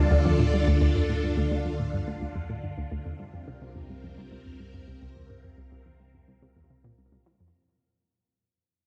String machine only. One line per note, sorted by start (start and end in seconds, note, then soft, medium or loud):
0.00 3.06 D3 medium
0.00 0.37 C4 medium
0.00 4.85 D4 medium
0.00 7.54 F4 medium
0.00 3.06 A4 medium
3.06 7.54 C3 medium
3.32 7.54 C4 medium
3.42 7.54 A#4 medium